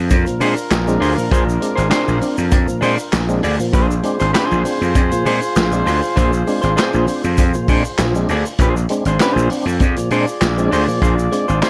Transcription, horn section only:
0.10 3.40 D4 medium
0.10 3.39 F4 medium
0.10 3.39 A#4 medium
3.74 8.25 F4 loud
3.74 8.25 G#4 loud
3.74 8.25 C5 loud
9.80 11.70 F4 medium
9.80 11.70 G#4 medium
9.80 11.70 D5 medium

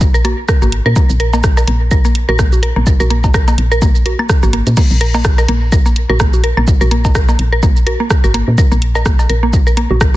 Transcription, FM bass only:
0.00 0.35 A#1 medium
0.62 0.81 G#1 medium
0.86 0.94 A#2 medium
1.10 1.65 A#1 loud
1.68 2.25 A#1 medium
2.29 2.73 A#1 medium
2.76 2.96 A#1 medium
3.00 3.55 A#1 loud
3.58 4.16 A#1 medium
4.43 4.62 G#1 medium
4.67 4.75 A#2 loud
4.91 5.46 A#1 loud
5.49 6.06 A#1 medium
6.10 6.54 A#1 medium
6.57 6.77 A#1 medium
6.81 7.36 A#1 loud
7.39 7.97 A#1 medium
8.24 8.43 G#1 medium
8.48 8.56 A#2 medium
8.72 9.27 A#1 loud
9.30 9.87 A#1 medium
9.91 10.16 A#1 medium

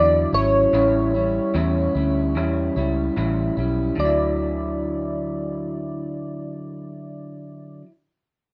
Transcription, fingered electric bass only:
0.00 0.25 E2 medium
0.33 0.65 G#1 medium
0.73 1.38 A1 medium
1.55 1.87 E2 medium
1.95 2.37 D2 medium
2.37 2.69 E2 medium
2.76 3.09 C#2 medium
3.17 3.49 A1 medium
3.57 3.90 B1 medium
3.98 7.80 D2 medium

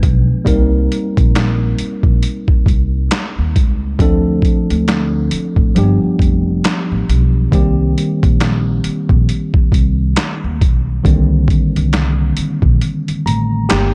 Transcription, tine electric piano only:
0.00 0.48 F3 medium
0.00 0.48 G#3 soft
0.00 0.48 B3 medium
0.00 0.48 D4 medium
0.00 0.48 B4 medium
0.45 3.94 G3 medium
0.45 3.95 A#3 medium
0.45 3.95 C4 medium
0.45 3.95 D#4 medium
0.45 3.96 A#4 medium
3.99 5.72 F3 medium
3.99 5.72 A3 medium
3.99 5.73 C4 medium
3.99 5.73 D4 medium
3.99 5.74 A4 medium
5.75 7.48 F3 medium
5.75 7.49 G3 medium
5.75 5.84 A#3 medium
5.75 7.50 D4 medium
5.75 7.50 G4 medium
5.83 7.53 B3 medium
7.52 11.01 D#3 medium
7.52 11.01 G3 medium
7.52 11.02 A#3 medium
7.52 11.02 C4 medium
7.52 11.03 G4 medium
11.04 13.94 D3 medium
11.04 13.94 D#3 medium
11.04 13.94 G3 medium
11.04 13.70 A#3 medium
11.04 13.94 C4 medium
13.26 13.67 A#5 medium
13.69 13.94 A#3 medium
13.69 13.94 G4 medium
13.69 13.94 G5 medium

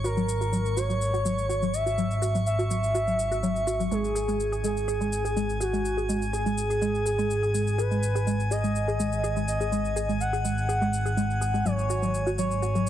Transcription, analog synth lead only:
0.04 0.78 A#4 loud
0.77 1.75 C#5 loud
1.73 2.37 E5 loud
2.46 3.82 E5 loud
3.91 4.55 G#4 loud
4.64 5.51 G#4 loud
5.61 6.24 F#4 loud
6.33 7.80 G#4 loud
7.78 8.42 B4 loud
8.51 9.38 D#5 medium
9.48 10.11 D#5 loud
10.20 11.67 F#5 loud
11.65 12.29 C#5 loud
12.38 12.89 C#5 loud

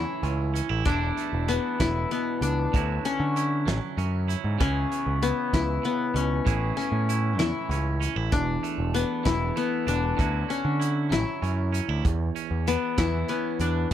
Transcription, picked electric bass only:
0.23 0.60 C#2 loud
0.70 0.82 A1 medium
0.86 1.10 E1 medium
1.33 1.57 E1 medium
1.80 2.04 E1 medium
2.41 2.66 C#2 medium
2.74 2.98 D2 medium
3.20 3.68 D3 medium
3.67 3.79 A1 medium
3.97 4.34 F#2 loud
4.44 4.56 G#2 medium
4.60 4.84 C#2 medium
5.06 5.31 C#2 medium
5.53 5.77 C#2 medium
6.14 6.39 C#2 medium
6.46 6.71 A1 medium
6.92 7.39 A2 medium
7.39 7.51 E2 medium
7.69 8.06 C#2 medium
8.16 8.28 A1 medium
8.32 8.57 E1 loud
8.78 9.03 E1 medium
9.26 9.50 E1 medium
9.87 10.12 E1 medium
10.18 10.43 D2 medium
10.65 11.12 D3 medium
11.11 11.23 A1 medium
11.42 11.79 F#2 loud
11.88 12.01 D2 medium
12.05 12.29 E2 medium
12.51 12.75 E2 medium
12.98 13.22 E2 medium
13.60 13.84 E2 medium

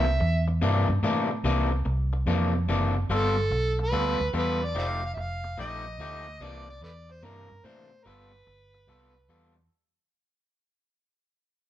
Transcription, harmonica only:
0.00 0.45 E5 medium
3.14 3.77 A4 medium
3.83 4.32 B4 loud
4.38 4.66 B4 medium
4.64 4.77 D5 medium
4.78 4.86 C5 medium
4.78 4.86 D5 medium
4.78 5.02 F5 loud
5.06 5.13 F5 loud
5.14 5.21 E5 medium
5.20 5.59 F5 loud
5.60 6.44 D#5 loud
6.43 6.69 D5 medium
6.70 6.82 D5 loud
6.84 6.90 A4 medium
6.84 6.92 B4 medium
6.84 7.13 D5 medium
7.12 7.26 C5 medium
7.24 7.66 A#4 medium
7.65 8.05 C5 medium
8.03 8.09 A#4 medium
8.03 9.57 B4 medium

